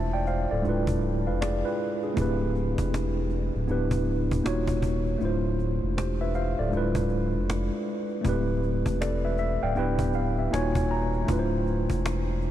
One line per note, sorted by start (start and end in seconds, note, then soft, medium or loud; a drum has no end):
0.00 0.47 E1 medium
0.00 0.60 A3 medium
0.00 0.61 D4 medium
0.00 0.62 E4 medium
0.00 0.63 F4 medium
0.00 0.28 C5 medium
0.00 0.12 E5 medium
0.00 0.12 A5 medium
0.14 0.27 D5 medium
0.14 0.27 G5 medium
0.26 0.50 C5 medium
0.26 0.50 F5 medium
0.26 cajon slap soft
0.51 0.65 D1 medium
0.51 0.87 A4 medium
0.51 0.87 D5 medium
0.62 2.12 G#3 medium
0.62 1.01 D4 medium
0.62 1.02 E4 medium
0.62 cajon slap soft
0.66 1.29 D1 loud
0.66 1.03 F4 medium
0.66 1.04 B4 medium
0.87 cajon bass loud
1.01 cajon slap soft
1.27 1.63 F1 medium
1.27 1.41 B4 medium
1.27 1.40 F5 medium
1.41 1.64 G#4 medium
1.41 1.64 D5 medium
1.41 cajon slap loud
1.65 2.01 F4 medium
1.65 2.01 B4 medium
2.02 2.39 D4 soft
2.02 2.39 G#4 medium
2.02 cajon slap soft
2.14 2.76 D1 loud
2.14 3.64 A3 medium
2.14 3.65 C4 medium
2.14 3.66 E4 medium
2.14 cajon bass loud
2.20 3.67 G4 medium
2.20 3.68 B4 medium
2.55 cajon slap soft
2.78 3.51 E1 medium
2.78 cajon bass loud
2.78 cajon slap soft
2.94 cajon slap medium
3.30 cajon slap soft
3.54 3.68 D1 medium
3.54 cajon slap soft
3.68 4.41 D1 loud
3.68 4.44 B3 medium
3.68 4.45 D4 medium
3.68 4.45 E4 medium
3.68 4.46 G4 medium
3.68 4.46 B4 medium
3.68 cajon slap soft
3.91 cajon bass loud
4.05 cajon slap soft
4.31 cajon bass medium
4.44 5.17 D#1 loud
4.44 5.20 A#3 medium
4.44 5.21 D#4 medium
4.44 5.21 F4 medium
4.44 5.22 F#4 medium
4.44 5.22 C#5 medium
4.44 cajon slap loud
4.68 cajon bass medium
4.82 cajon bass medium
5.05 cajon slap soft
5.18 5.80 D1 loud
5.18 6.68 A3 medium
5.18 6.69 D4 medium
5.18 6.70 E4 medium
5.18 cajon slap soft
5.23 6.71 F4 medium
5.23 5.96 C5 medium
5.59 cajon slap soft
5.83 6.55 E1 medium
5.98 6.20 G4 medium
5.98 6.20 C5 medium
5.98 cajon slap loud
6.21 6.35 B4 medium
6.21 6.34 E5 medium
6.34 6.58 C5 medium
6.34 6.58 F5 medium
6.34 cajon slap soft
6.59 6.72 D1 loud
6.59 6.95 A4 medium
6.59 6.95 D5 medium
6.70 7.36 D1 loud
6.70 8.20 G#3 medium
6.70 8.21 D4 medium
6.70 8.22 E4 medium
6.70 cajon slap soft
6.75 8.23 F4 medium
6.75 8.24 B4 medium
6.95 cajon bass medium
7.09 cajon slap soft
7.35 7.71 F1 medium
7.50 cajon slap loud
8.09 cajon slap soft
8.21 8.83 D1 loud
8.21 9.72 A3 medium
8.21 9.73 C4 medium
8.21 9.74 E4 medium
8.21 cajon bass medium
8.27 9.75 G4 medium
8.27 9.01 B4 medium
8.63 cajon slap soft
8.86 9.58 E1 medium
8.86 cajon bass loud
9.01 9.24 A4 medium
9.01 9.23 D5 medium
9.01 cajon slap loud
9.25 9.61 B4 medium
9.25 9.38 E5 medium
9.37 9.61 E5 medium
9.37 cajon slap soft
9.63 9.76 D1 medium
9.63 9.99 D5 medium
9.63 9.76 F5 medium
9.63 9.76 G5 medium
9.75 10.49 D1 loud
9.75 10.52 B3 medium
9.75 10.52 D4 medium
9.75 10.53 E4 medium
9.75 10.53 G4 medium
9.75 10.54 B4 medium
9.75 10.12 G5 medium
9.75 cajon slap soft
9.99 cajon bass medium
10.13 10.37 F5 medium
10.13 cajon slap soft
10.39 10.52 E5 medium
10.51 11.25 D#1 loud
10.51 11.28 A#3 medium
10.51 11.28 D#4 medium
10.51 11.29 F4 medium
10.51 11.29 F#4 medium
10.51 11.30 C#5 medium
10.51 10.88 G#5 medium
10.51 cajon slap loud
10.75 cajon bass medium
10.91 11.26 A#5 medium
11.13 cajon slap soft
11.25 11.87 D1 loud
11.25 12.51 A3 medium
11.25 12.51 D4 medium
11.25 12.51 E4 medium
11.25 cajon bass loud
11.31 12.51 F4 medium
11.31 11.39 B4 medium
11.39 12.51 C5 medium
11.67 cajon slap soft
11.90 12.51 E1 medium
11.90 cajon bass medium
12.06 cajon slap loud
12.41 cajon slap soft